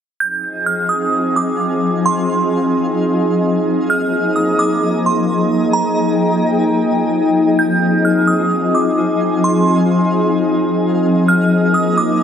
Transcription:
0.20 F3 C4 D#4 F4 G#4 D#5 G#5 G6
0.66 F6
0.89 D#6
1.36 D6
2.06 C6
3.90 F3 A#3 G#4 A#5 F6
4.36 D#6
4.59 D6
5.06 C6
5.73 G5 A#5
7.59 C4 F4 G#4 G#5 G6
8.05 F6
8.27 D#6
8.75 D6
9.44 C6
11.28 A#3 D#4 A#4 D#5 G#5 F6
11.74 D#6
11.97 D6

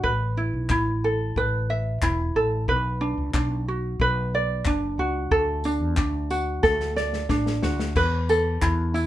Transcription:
Already playing: D4
0.03 A1 B4, kick
0.37 E4
0.53 B1
0.69 A1 E4, kick, clap
1.04 A4
1.36 A1 B4, kick
1.70 E5
2.02 E1 E4, kick, clap
2.35 A1 A4
2.68 B1 B4, kick
3.01 D4
3.18 C#2
3.34 B1 D4, kick, clap
3.68 F#4
4.00 B1 B4, kick
4.35 D5
4.65 F#1 D4, kick, clap
4.98 C#2 F#4
5.31 D2 A4, kick
5.64 D4, tambourine
5.80 E2
5.97 D2 D4, kick, clap
6.30 F#4, tambourine
6.63 D2 A4, kick, snare
6.80 snare
6.96 D5, snare
7.13 snare
7.29 A1 D4, kick, snare
7.46 snare
7.62 D2 F#4, snare
7.79 snare
7.96 E2 B4, kick, crash
8.29 A4, tambourine
8.62 E2 E4, kick, clap
8.94 E4, tambourine

